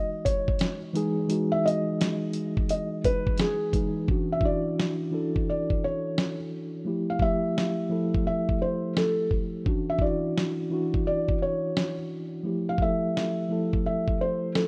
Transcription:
Already playing: tine electric piano E3 G#3 D#4 F#4, felt piano D#5
0.25 felt piano C#5, kick, closed hi-hat
0.48 kick
0.59 snare, closed hi-hat
0.93 tine electric piano E3 G#3 D#4 G#4, closed hi-hat
1.28 tine electric piano E3 G#3 D#4 F#4, closed hi-hat
1.52 felt piano E5
1.65 felt piano D#5, closed hi-hat
2.01 snare, closed hi-hat
2.33 closed hi-hat
2.57 kick
2.69 felt piano D#5, closed hi-hat
3.04 felt piano B4, kick, closed hi-hat
3.27 kick
3.38 felt piano G#4, snare, closed hi-hat
3.72 tine electric piano E3 G#3 D#4 G#4, kick, closed hi-hat
4.08 tine electric piano E3 C#4 D4 F#4, kick
4.32 felt piano E5
4.41 tine electric piano E3 D4 E4 F#4, kick
4.45 felt piano D5
4.80 snare
5.11 tine electric piano E3 D4 E4 A4
5.36 kick
5.50 felt piano D5
5.70 kick
5.84 felt piano C#5
6.18 snare
6.85 tine electric piano F3 A3 E4 G4
7.10 felt piano F5
7.19 tine electric piano F3 A3 E4, felt piano E5, kick
7.24 tine electric piano G4
7.58 snare
7.89 tine electric piano F3 A3 E4 A4
8.14 kick
8.27 felt piano E5
8.49 kick
8.62 felt piano C5
8.97 felt piano A4, snare
9.31 kick
9.65 tine electric piano E3 C#4 D4 F#4, kick
9.90 felt piano E5
9.99 tine electric piano E3 D4 E4, felt piano D5, kick
10.04 tine electric piano F#4
10.38 snare
10.70 tine electric piano E3 D4 E4 F#4
10.94 kick
11.07 felt piano D5
11.29 kick
11.42 felt piano C#5
11.77 snare
12.43 tine electric piano F3 A3 E4 G4
12.69 felt piano F5
12.78 tine electric piano F3 A3 E4, kick
12.82 tine electric piano A4, felt piano E5
13.17 snare
13.49 tine electric piano F3 A3 E4 A4
13.73 kick
13.86 felt piano E5
14.08 kick
14.21 felt piano C5
14.55 felt piano A4, snare

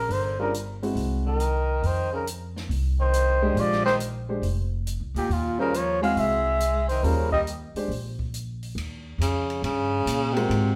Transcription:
Already playing: baritone saxophone C#3, muted trumpet A#4
0.09 upright bass G1, baritone saxophone D3, muted trumpet C5, open hi-hat
0.39 baritone saxophone C#3, upright piano G3 D4 F4 A#4, muted trumpet A#4
0.54 closed hi-hat
0.82 upright piano G#3 C4 E4 F#4, open hi-hat
0.95 upright bass C2, open hi-hat
1.26 baritone saxophone D#3, muted trumpet A#4
1.40 closed hi-hat
1.82 upright bass F2, baritone saxophone D#3, muted trumpet C5, open hi-hat
2.12 baritone saxophone C#3, muted trumpet A#4
2.27 closed hi-hat
2.56 snare
2.69 upright bass C2, open hi-hat
2.99 baritone saxophone D#3, muted trumpet C5
3.13 closed hi-hat
3.42 upright piano G#3 D4 G4 C5
3.55 upright bass A#1, baritone saxophone F3, open hi-hat
3.60 muted trumpet D5
3.72 snare
3.85 baritone saxophone D#3, muted trumpet C5, snare
4.00 closed hi-hat
4.29 upright piano G#3 D4 G4 C5
4.42 upright bass F1, open hi-hat
4.87 closed hi-hat
5.00 upright bass C2
5.14 upright bass D2, baritone saxophone A#2, muted trumpet G4, open hi-hat
5.29 upright bass D#2, baritone saxophone A#2, muted trumpet F4, open hi-hat
5.59 baritone saxophone C#3, upright piano G3 C#4 F4 C5, muted trumpet A#4
5.74 baritone saxophone F3, muted trumpet C#5, closed hi-hat
6.01 upright piano G#3 C4 E4 F#4, baritone saxophone G#3, muted trumpet F5, open hi-hat
6.16 upright bass C2, baritone saxophone G#3, muted trumpet E5, open hi-hat
6.60 closed hi-hat
6.88 baritone saxophone D#3, muted trumpet C5, open hi-hat
7.03 upright bass D#2, baritone saxophone C#3, upright piano G3 C#4 F4 C5, muted trumpet A#4, open hi-hat
7.32 baritone saxophone G3, muted trumpet D#5, kick
7.47 closed hi-hat
7.74 upright piano G#3 D4 G4 C5, muted upright bass stroke, open hi-hat
7.88 upright bass A#1, open hi-hat
8.19 kick
8.34 closed hi-hat
8.63 open hi-hat
8.75 upright bass D#2, ride
9.18 upright bass F2, baritone saxophone C#3, hi-hat pedal, ride
9.50 ride
9.62 upright bass G2, baritone saxophone C#3, ride
10.06 upright bass A#2, hi-hat pedal, ride
10.34 baritone saxophone C3, upright piano G#3 C4 F4 F#4 A#4, ride
10.49 upright bass G#2, ride

